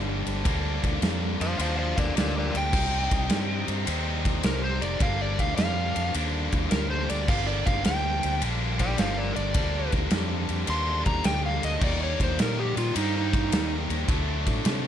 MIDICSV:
0, 0, Header, 1, 5, 480
1, 0, Start_track
1, 0, Key_signature, -2, "minor"
1, 0, Tempo, 567644
1, 390, Time_signature, 4, 2, 24, 8
1, 12575, End_track
2, 0, Start_track
2, 0, Title_t, "Electric slide guitar"
2, 0, Program_c, 0, 29
2, 1196, Note_on_c, 0, 72, 77
2, 1197, Note_on_c, 0, 77, 85
2, 1350, Note_off_c, 0, 77, 0
2, 1352, Note_off_c, 0, 72, 0
2, 1361, Note_on_c, 0, 72, 72
2, 1363, Note_on_c, 0, 77, 78
2, 1502, Note_off_c, 0, 72, 0
2, 1507, Note_off_c, 0, 77, 0
2, 1512, Note_on_c, 0, 72, 79
2, 1517, Note_on_c, 0, 77, 91
2, 1661, Note_off_c, 0, 72, 0
2, 1670, Note_off_c, 0, 77, 0
2, 1678, Note_on_c, 0, 70, 68
2, 1685, Note_on_c, 0, 74, 84
2, 1834, Note_off_c, 0, 70, 0
2, 1835, Note_off_c, 0, 74, 0
2, 1844, Note_on_c, 0, 70, 71
2, 1847, Note_on_c, 0, 74, 93
2, 1988, Note_off_c, 0, 70, 0
2, 1996, Note_off_c, 0, 74, 0
2, 2013, Note_on_c, 0, 70, 75
2, 2018, Note_on_c, 0, 74, 75
2, 2154, Note_off_c, 0, 70, 0
2, 2161, Note_off_c, 0, 74, 0
2, 2173, Note_on_c, 0, 79, 95
2, 3097, Note_off_c, 0, 79, 0
2, 3770, Note_on_c, 0, 70, 104
2, 3919, Note_off_c, 0, 70, 0
2, 3926, Note_on_c, 0, 72, 90
2, 4073, Note_on_c, 0, 74, 92
2, 4077, Note_off_c, 0, 72, 0
2, 4231, Note_off_c, 0, 74, 0
2, 4246, Note_on_c, 0, 77, 84
2, 4398, Note_off_c, 0, 77, 0
2, 4410, Note_on_c, 0, 74, 83
2, 4559, Note_off_c, 0, 74, 0
2, 4566, Note_on_c, 0, 77, 90
2, 4700, Note_off_c, 0, 77, 0
2, 4711, Note_on_c, 0, 77, 100
2, 5180, Note_off_c, 0, 77, 0
2, 5674, Note_on_c, 0, 70, 103
2, 5832, Note_off_c, 0, 70, 0
2, 5839, Note_on_c, 0, 72, 95
2, 5994, Note_off_c, 0, 72, 0
2, 5997, Note_on_c, 0, 74, 82
2, 6153, Note_off_c, 0, 74, 0
2, 6164, Note_on_c, 0, 77, 83
2, 6314, Note_on_c, 0, 74, 92
2, 6317, Note_off_c, 0, 77, 0
2, 6472, Note_off_c, 0, 74, 0
2, 6479, Note_on_c, 0, 77, 97
2, 6635, Note_off_c, 0, 77, 0
2, 6649, Note_on_c, 0, 79, 100
2, 7110, Note_off_c, 0, 79, 0
2, 7442, Note_on_c, 0, 74, 81
2, 7448, Note_on_c, 0, 79, 93
2, 7598, Note_off_c, 0, 79, 0
2, 7602, Note_off_c, 0, 74, 0
2, 7606, Note_on_c, 0, 72, 89
2, 7614, Note_on_c, 0, 77, 105
2, 7751, Note_off_c, 0, 72, 0
2, 7754, Note_on_c, 0, 70, 67
2, 7761, Note_on_c, 0, 74, 82
2, 7763, Note_off_c, 0, 77, 0
2, 7903, Note_off_c, 0, 74, 0
2, 7906, Note_off_c, 0, 70, 0
2, 7913, Note_on_c, 0, 74, 95
2, 8382, Note_off_c, 0, 74, 0
2, 9046, Note_on_c, 0, 84, 97
2, 9352, Note_off_c, 0, 84, 0
2, 9355, Note_on_c, 0, 82, 81
2, 9512, Note_off_c, 0, 82, 0
2, 9515, Note_on_c, 0, 79, 97
2, 9672, Note_off_c, 0, 79, 0
2, 9689, Note_on_c, 0, 77, 80
2, 9838, Note_off_c, 0, 77, 0
2, 9843, Note_on_c, 0, 75, 79
2, 9995, Note_off_c, 0, 75, 0
2, 10012, Note_on_c, 0, 74, 86
2, 10160, Note_off_c, 0, 74, 0
2, 10175, Note_on_c, 0, 73, 91
2, 10321, Note_off_c, 0, 73, 0
2, 10347, Note_on_c, 0, 72, 86
2, 10487, Note_off_c, 0, 72, 0
2, 10505, Note_on_c, 0, 70, 97
2, 10646, Note_off_c, 0, 70, 0
2, 10647, Note_on_c, 0, 67, 87
2, 10797, Note_off_c, 0, 67, 0
2, 10809, Note_on_c, 0, 65, 84
2, 10957, Note_off_c, 0, 65, 0
2, 10973, Note_on_c, 0, 63, 98
2, 11119, Note_off_c, 0, 63, 0
2, 11144, Note_on_c, 0, 63, 100
2, 11594, Note_off_c, 0, 63, 0
2, 12575, End_track
3, 0, Start_track
3, 0, Title_t, "Distorted electric guitar"
3, 0, Program_c, 1, 30
3, 0, Note_on_c, 1, 43, 69
3, 0, Note_on_c, 1, 50, 86
3, 0, Note_on_c, 1, 55, 82
3, 0, Note_on_c, 1, 58, 80
3, 0, Note_on_c, 1, 62, 90
3, 359, Note_off_c, 1, 43, 0
3, 369, Note_off_c, 1, 50, 0
3, 370, Note_on_c, 1, 43, 87
3, 380, Note_on_c, 1, 50, 89
3, 385, Note_off_c, 1, 55, 0
3, 386, Note_off_c, 1, 62, 0
3, 388, Note_on_c, 1, 55, 94
3, 391, Note_off_c, 1, 58, 0
3, 395, Note_on_c, 1, 58, 92
3, 401, Note_on_c, 1, 62, 102
3, 1321, Note_off_c, 1, 43, 0
3, 1329, Note_off_c, 1, 50, 0
3, 1331, Note_on_c, 1, 43, 86
3, 1339, Note_on_c, 1, 50, 79
3, 1344, Note_off_c, 1, 55, 0
3, 1347, Note_on_c, 1, 55, 87
3, 1348, Note_off_c, 1, 62, 0
3, 1354, Note_off_c, 1, 58, 0
3, 1357, Note_on_c, 1, 58, 79
3, 1364, Note_on_c, 1, 62, 84
3, 2289, Note_off_c, 1, 50, 0
3, 2292, Note_on_c, 1, 48, 89
3, 2295, Note_off_c, 1, 43, 0
3, 2304, Note_off_c, 1, 55, 0
3, 2308, Note_on_c, 1, 55, 88
3, 2311, Note_off_c, 1, 62, 0
3, 2313, Note_off_c, 1, 58, 0
3, 2316, Note_on_c, 1, 60, 88
3, 2325, Note_on_c, 1, 63, 106
3, 3250, Note_off_c, 1, 48, 0
3, 3260, Note_on_c, 1, 48, 79
3, 3268, Note_off_c, 1, 60, 0
3, 3272, Note_off_c, 1, 55, 0
3, 3272, Note_off_c, 1, 63, 0
3, 3276, Note_on_c, 1, 55, 80
3, 3282, Note_on_c, 1, 60, 87
3, 3294, Note_on_c, 1, 63, 89
3, 4220, Note_off_c, 1, 48, 0
3, 4220, Note_on_c, 1, 43, 76
3, 4228, Note_on_c, 1, 50, 89
3, 4231, Note_off_c, 1, 60, 0
3, 4234, Note_off_c, 1, 55, 0
3, 4237, Note_off_c, 1, 63, 0
3, 4237, Note_on_c, 1, 55, 106
3, 4245, Note_on_c, 1, 58, 93
3, 4251, Note_on_c, 1, 62, 103
3, 5174, Note_off_c, 1, 43, 0
3, 5177, Note_on_c, 1, 43, 80
3, 5179, Note_off_c, 1, 50, 0
3, 5189, Note_on_c, 1, 50, 75
3, 5195, Note_off_c, 1, 55, 0
3, 5198, Note_on_c, 1, 55, 83
3, 5200, Note_off_c, 1, 58, 0
3, 5204, Note_on_c, 1, 58, 89
3, 5206, Note_off_c, 1, 62, 0
3, 5209, Note_on_c, 1, 62, 82
3, 6145, Note_off_c, 1, 43, 0
3, 6145, Note_off_c, 1, 50, 0
3, 6148, Note_on_c, 1, 43, 89
3, 6156, Note_on_c, 1, 50, 93
3, 6161, Note_off_c, 1, 55, 0
3, 6164, Note_on_c, 1, 55, 99
3, 6168, Note_off_c, 1, 58, 0
3, 6171, Note_on_c, 1, 58, 99
3, 6174, Note_off_c, 1, 62, 0
3, 6177, Note_on_c, 1, 62, 97
3, 7100, Note_off_c, 1, 43, 0
3, 7103, Note_off_c, 1, 50, 0
3, 7104, Note_on_c, 1, 43, 84
3, 7113, Note_on_c, 1, 50, 81
3, 7118, Note_off_c, 1, 55, 0
3, 7121, Note_on_c, 1, 55, 80
3, 7124, Note_off_c, 1, 58, 0
3, 7128, Note_on_c, 1, 58, 89
3, 7136, Note_off_c, 1, 62, 0
3, 7139, Note_on_c, 1, 62, 87
3, 8051, Note_off_c, 1, 43, 0
3, 8056, Note_off_c, 1, 50, 0
3, 8062, Note_on_c, 1, 43, 81
3, 8066, Note_on_c, 1, 50, 90
3, 8072, Note_off_c, 1, 55, 0
3, 8076, Note_on_c, 1, 55, 99
3, 8080, Note_off_c, 1, 58, 0
3, 8080, Note_off_c, 1, 62, 0
3, 8084, Note_on_c, 1, 58, 103
3, 8090, Note_on_c, 1, 62, 100
3, 9006, Note_off_c, 1, 43, 0
3, 9015, Note_off_c, 1, 50, 0
3, 9016, Note_on_c, 1, 43, 82
3, 9025, Note_on_c, 1, 50, 91
3, 9032, Note_off_c, 1, 55, 0
3, 9034, Note_off_c, 1, 62, 0
3, 9035, Note_on_c, 1, 55, 74
3, 9040, Note_off_c, 1, 58, 0
3, 9044, Note_on_c, 1, 58, 89
3, 9049, Note_on_c, 1, 62, 87
3, 9972, Note_off_c, 1, 50, 0
3, 9975, Note_on_c, 1, 51, 85
3, 9976, Note_off_c, 1, 55, 0
3, 9977, Note_off_c, 1, 43, 0
3, 9986, Note_off_c, 1, 58, 0
3, 9986, Note_on_c, 1, 55, 100
3, 9993, Note_off_c, 1, 62, 0
3, 9997, Note_on_c, 1, 58, 96
3, 10007, Note_on_c, 1, 63, 101
3, 10929, Note_off_c, 1, 51, 0
3, 10940, Note_off_c, 1, 55, 0
3, 10940, Note_on_c, 1, 51, 81
3, 10946, Note_off_c, 1, 58, 0
3, 10951, Note_off_c, 1, 63, 0
3, 10953, Note_on_c, 1, 55, 88
3, 10960, Note_on_c, 1, 58, 83
3, 10973, Note_on_c, 1, 63, 83
3, 11895, Note_off_c, 1, 51, 0
3, 11901, Note_on_c, 1, 50, 88
3, 11902, Note_off_c, 1, 55, 0
3, 11906, Note_off_c, 1, 58, 0
3, 11912, Note_off_c, 1, 63, 0
3, 11919, Note_on_c, 1, 54, 103
3, 11927, Note_on_c, 1, 57, 89
3, 11936, Note_on_c, 1, 62, 93
3, 12575, Note_off_c, 1, 50, 0
3, 12575, Note_off_c, 1, 54, 0
3, 12575, Note_off_c, 1, 57, 0
3, 12575, Note_off_c, 1, 62, 0
3, 12575, End_track
4, 0, Start_track
4, 0, Title_t, "Fingered electric bass"
4, 0, Program_c, 2, 33
4, 0, Note_on_c, 2, 31, 94
4, 197, Note_off_c, 2, 31, 0
4, 223, Note_on_c, 2, 31, 84
4, 370, Note_off_c, 2, 31, 0
4, 384, Note_on_c, 2, 38, 96
4, 682, Note_off_c, 2, 38, 0
4, 707, Note_on_c, 2, 38, 86
4, 853, Note_off_c, 2, 38, 0
4, 861, Note_on_c, 2, 41, 92
4, 1161, Note_off_c, 2, 41, 0
4, 1187, Note_on_c, 2, 41, 93
4, 1333, Note_off_c, 2, 41, 0
4, 1343, Note_on_c, 2, 39, 95
4, 1642, Note_off_c, 2, 39, 0
4, 1672, Note_on_c, 2, 39, 88
4, 1817, Note_off_c, 2, 39, 0
4, 1830, Note_on_c, 2, 38, 82
4, 2127, Note_off_c, 2, 38, 0
4, 2153, Note_on_c, 2, 38, 79
4, 2298, Note_off_c, 2, 38, 0
4, 2309, Note_on_c, 2, 36, 97
4, 2607, Note_off_c, 2, 36, 0
4, 2635, Note_on_c, 2, 36, 85
4, 2780, Note_off_c, 2, 36, 0
4, 2791, Note_on_c, 2, 43, 89
4, 3088, Note_off_c, 2, 43, 0
4, 3111, Note_on_c, 2, 43, 78
4, 3258, Note_off_c, 2, 43, 0
4, 3273, Note_on_c, 2, 39, 99
4, 3722, Note_off_c, 2, 39, 0
4, 3752, Note_on_c, 2, 36, 89
4, 4049, Note_off_c, 2, 36, 0
4, 4075, Note_on_c, 2, 29, 83
4, 4221, Note_off_c, 2, 29, 0
4, 4230, Note_on_c, 2, 31, 97
4, 4528, Note_off_c, 2, 31, 0
4, 4557, Note_on_c, 2, 38, 89
4, 4702, Note_off_c, 2, 38, 0
4, 4716, Note_on_c, 2, 41, 90
4, 5012, Note_off_c, 2, 41, 0
4, 5042, Note_on_c, 2, 41, 86
4, 5184, Note_off_c, 2, 41, 0
4, 5199, Note_on_c, 2, 39, 91
4, 5494, Note_off_c, 2, 39, 0
4, 5519, Note_on_c, 2, 39, 88
4, 5663, Note_off_c, 2, 39, 0
4, 5682, Note_on_c, 2, 38, 93
4, 5976, Note_off_c, 2, 38, 0
4, 6008, Note_on_c, 2, 38, 73
4, 6148, Note_off_c, 2, 38, 0
4, 6160, Note_on_c, 2, 31, 95
4, 6454, Note_off_c, 2, 31, 0
4, 6484, Note_on_c, 2, 31, 86
4, 6626, Note_off_c, 2, 31, 0
4, 6645, Note_on_c, 2, 38, 99
4, 6938, Note_off_c, 2, 38, 0
4, 6971, Note_on_c, 2, 38, 88
4, 7110, Note_off_c, 2, 38, 0
4, 7120, Note_on_c, 2, 34, 98
4, 7566, Note_off_c, 2, 34, 0
4, 7601, Note_on_c, 2, 31, 93
4, 7895, Note_off_c, 2, 31, 0
4, 7919, Note_on_c, 2, 31, 85
4, 8063, Note_off_c, 2, 31, 0
4, 8074, Note_on_c, 2, 38, 96
4, 8371, Note_off_c, 2, 38, 0
4, 8396, Note_on_c, 2, 38, 92
4, 8542, Note_off_c, 2, 38, 0
4, 8548, Note_on_c, 2, 41, 86
4, 8848, Note_off_c, 2, 41, 0
4, 8874, Note_on_c, 2, 41, 87
4, 9020, Note_off_c, 2, 41, 0
4, 9032, Note_on_c, 2, 39, 96
4, 9329, Note_off_c, 2, 39, 0
4, 9356, Note_on_c, 2, 39, 95
4, 9501, Note_off_c, 2, 39, 0
4, 9515, Note_on_c, 2, 38, 87
4, 9811, Note_off_c, 2, 38, 0
4, 9837, Note_on_c, 2, 38, 76
4, 9981, Note_off_c, 2, 38, 0
4, 9990, Note_on_c, 2, 39, 105
4, 10287, Note_off_c, 2, 39, 0
4, 10317, Note_on_c, 2, 39, 96
4, 10460, Note_off_c, 2, 39, 0
4, 10475, Note_on_c, 2, 46, 85
4, 10769, Note_off_c, 2, 46, 0
4, 10793, Note_on_c, 2, 46, 79
4, 10938, Note_off_c, 2, 46, 0
4, 10957, Note_on_c, 2, 43, 105
4, 11401, Note_off_c, 2, 43, 0
4, 11432, Note_on_c, 2, 39, 94
4, 11727, Note_off_c, 2, 39, 0
4, 11753, Note_on_c, 2, 39, 90
4, 11896, Note_off_c, 2, 39, 0
4, 11913, Note_on_c, 2, 38, 98
4, 12206, Note_off_c, 2, 38, 0
4, 12232, Note_on_c, 2, 45, 92
4, 12375, Note_off_c, 2, 45, 0
4, 12389, Note_on_c, 2, 48, 89
4, 12575, Note_off_c, 2, 48, 0
4, 12575, End_track
5, 0, Start_track
5, 0, Title_t, "Drums"
5, 225, Note_on_c, 9, 51, 71
5, 309, Note_off_c, 9, 51, 0
5, 383, Note_on_c, 9, 36, 118
5, 383, Note_on_c, 9, 51, 93
5, 467, Note_off_c, 9, 36, 0
5, 468, Note_off_c, 9, 51, 0
5, 707, Note_on_c, 9, 36, 82
5, 707, Note_on_c, 9, 51, 65
5, 792, Note_off_c, 9, 36, 0
5, 792, Note_off_c, 9, 51, 0
5, 864, Note_on_c, 9, 51, 86
5, 873, Note_on_c, 9, 38, 108
5, 948, Note_off_c, 9, 51, 0
5, 957, Note_off_c, 9, 38, 0
5, 1193, Note_on_c, 9, 51, 77
5, 1277, Note_off_c, 9, 51, 0
5, 1348, Note_on_c, 9, 51, 97
5, 1433, Note_off_c, 9, 51, 0
5, 1672, Note_on_c, 9, 36, 87
5, 1672, Note_on_c, 9, 51, 74
5, 1757, Note_off_c, 9, 36, 0
5, 1757, Note_off_c, 9, 51, 0
5, 1834, Note_on_c, 9, 51, 102
5, 1843, Note_on_c, 9, 38, 123
5, 1918, Note_off_c, 9, 51, 0
5, 1928, Note_off_c, 9, 38, 0
5, 2154, Note_on_c, 9, 51, 72
5, 2239, Note_off_c, 9, 51, 0
5, 2308, Note_on_c, 9, 49, 98
5, 2310, Note_on_c, 9, 36, 113
5, 2393, Note_off_c, 9, 49, 0
5, 2394, Note_off_c, 9, 36, 0
5, 2631, Note_on_c, 9, 51, 76
5, 2634, Note_on_c, 9, 36, 88
5, 2716, Note_off_c, 9, 51, 0
5, 2718, Note_off_c, 9, 36, 0
5, 2787, Note_on_c, 9, 51, 98
5, 2796, Note_on_c, 9, 38, 106
5, 2872, Note_off_c, 9, 51, 0
5, 2881, Note_off_c, 9, 38, 0
5, 3112, Note_on_c, 9, 51, 78
5, 3197, Note_off_c, 9, 51, 0
5, 3273, Note_on_c, 9, 51, 101
5, 3357, Note_off_c, 9, 51, 0
5, 3594, Note_on_c, 9, 51, 71
5, 3596, Note_on_c, 9, 36, 85
5, 3679, Note_off_c, 9, 51, 0
5, 3680, Note_off_c, 9, 36, 0
5, 3749, Note_on_c, 9, 51, 96
5, 3758, Note_on_c, 9, 38, 106
5, 3833, Note_off_c, 9, 51, 0
5, 3843, Note_off_c, 9, 38, 0
5, 4076, Note_on_c, 9, 51, 68
5, 4160, Note_off_c, 9, 51, 0
5, 4230, Note_on_c, 9, 51, 90
5, 4232, Note_on_c, 9, 36, 118
5, 4315, Note_off_c, 9, 51, 0
5, 4316, Note_off_c, 9, 36, 0
5, 4558, Note_on_c, 9, 36, 80
5, 4560, Note_on_c, 9, 51, 65
5, 4642, Note_off_c, 9, 36, 0
5, 4644, Note_off_c, 9, 51, 0
5, 4714, Note_on_c, 9, 51, 86
5, 4724, Note_on_c, 9, 38, 119
5, 4799, Note_off_c, 9, 51, 0
5, 4808, Note_off_c, 9, 38, 0
5, 5038, Note_on_c, 9, 51, 77
5, 5122, Note_off_c, 9, 51, 0
5, 5195, Note_on_c, 9, 51, 94
5, 5280, Note_off_c, 9, 51, 0
5, 5516, Note_on_c, 9, 51, 71
5, 5520, Note_on_c, 9, 36, 85
5, 5601, Note_off_c, 9, 51, 0
5, 5604, Note_off_c, 9, 36, 0
5, 5673, Note_on_c, 9, 51, 91
5, 5683, Note_on_c, 9, 38, 107
5, 5758, Note_off_c, 9, 51, 0
5, 5767, Note_off_c, 9, 38, 0
5, 6000, Note_on_c, 9, 51, 84
5, 6085, Note_off_c, 9, 51, 0
5, 6159, Note_on_c, 9, 36, 114
5, 6159, Note_on_c, 9, 57, 99
5, 6243, Note_off_c, 9, 57, 0
5, 6244, Note_off_c, 9, 36, 0
5, 6483, Note_on_c, 9, 36, 86
5, 6484, Note_on_c, 9, 51, 73
5, 6567, Note_off_c, 9, 36, 0
5, 6568, Note_off_c, 9, 51, 0
5, 6634, Note_on_c, 9, 51, 104
5, 6643, Note_on_c, 9, 38, 115
5, 6718, Note_off_c, 9, 51, 0
5, 6728, Note_off_c, 9, 38, 0
5, 6959, Note_on_c, 9, 51, 78
5, 7044, Note_off_c, 9, 51, 0
5, 7117, Note_on_c, 9, 51, 88
5, 7201, Note_off_c, 9, 51, 0
5, 7435, Note_on_c, 9, 51, 78
5, 7440, Note_on_c, 9, 36, 82
5, 7520, Note_off_c, 9, 51, 0
5, 7524, Note_off_c, 9, 36, 0
5, 7594, Note_on_c, 9, 51, 99
5, 7603, Note_on_c, 9, 38, 114
5, 7678, Note_off_c, 9, 51, 0
5, 7688, Note_off_c, 9, 38, 0
5, 7917, Note_on_c, 9, 51, 67
5, 8002, Note_off_c, 9, 51, 0
5, 8070, Note_on_c, 9, 51, 103
5, 8073, Note_on_c, 9, 36, 113
5, 8154, Note_off_c, 9, 51, 0
5, 8158, Note_off_c, 9, 36, 0
5, 8390, Note_on_c, 9, 51, 64
5, 8395, Note_on_c, 9, 36, 84
5, 8475, Note_off_c, 9, 51, 0
5, 8480, Note_off_c, 9, 36, 0
5, 8545, Note_on_c, 9, 51, 95
5, 8554, Note_on_c, 9, 38, 114
5, 8629, Note_off_c, 9, 51, 0
5, 8639, Note_off_c, 9, 38, 0
5, 8868, Note_on_c, 9, 51, 71
5, 8953, Note_off_c, 9, 51, 0
5, 9024, Note_on_c, 9, 51, 90
5, 9109, Note_off_c, 9, 51, 0
5, 9349, Note_on_c, 9, 51, 62
5, 9354, Note_on_c, 9, 36, 84
5, 9434, Note_off_c, 9, 51, 0
5, 9438, Note_off_c, 9, 36, 0
5, 9507, Note_on_c, 9, 51, 97
5, 9516, Note_on_c, 9, 38, 111
5, 9591, Note_off_c, 9, 51, 0
5, 9600, Note_off_c, 9, 38, 0
5, 9835, Note_on_c, 9, 51, 78
5, 9919, Note_off_c, 9, 51, 0
5, 9991, Note_on_c, 9, 36, 122
5, 9992, Note_on_c, 9, 49, 94
5, 10076, Note_off_c, 9, 36, 0
5, 10077, Note_off_c, 9, 49, 0
5, 10316, Note_on_c, 9, 36, 83
5, 10321, Note_on_c, 9, 51, 65
5, 10400, Note_off_c, 9, 36, 0
5, 10405, Note_off_c, 9, 51, 0
5, 10475, Note_on_c, 9, 51, 102
5, 10485, Note_on_c, 9, 38, 117
5, 10560, Note_off_c, 9, 51, 0
5, 10569, Note_off_c, 9, 38, 0
5, 10799, Note_on_c, 9, 51, 80
5, 10884, Note_off_c, 9, 51, 0
5, 10956, Note_on_c, 9, 51, 106
5, 11040, Note_off_c, 9, 51, 0
5, 11275, Note_on_c, 9, 36, 90
5, 11276, Note_on_c, 9, 51, 71
5, 11360, Note_off_c, 9, 36, 0
5, 11361, Note_off_c, 9, 51, 0
5, 11435, Note_on_c, 9, 51, 106
5, 11445, Note_on_c, 9, 38, 117
5, 11520, Note_off_c, 9, 51, 0
5, 11529, Note_off_c, 9, 38, 0
5, 11755, Note_on_c, 9, 51, 77
5, 11840, Note_off_c, 9, 51, 0
5, 11910, Note_on_c, 9, 36, 115
5, 11910, Note_on_c, 9, 51, 94
5, 11994, Note_off_c, 9, 51, 0
5, 11995, Note_off_c, 9, 36, 0
5, 12232, Note_on_c, 9, 51, 73
5, 12233, Note_on_c, 9, 36, 86
5, 12316, Note_off_c, 9, 51, 0
5, 12318, Note_off_c, 9, 36, 0
5, 12388, Note_on_c, 9, 51, 99
5, 12397, Note_on_c, 9, 38, 114
5, 12472, Note_off_c, 9, 51, 0
5, 12481, Note_off_c, 9, 38, 0
5, 12575, End_track
0, 0, End_of_file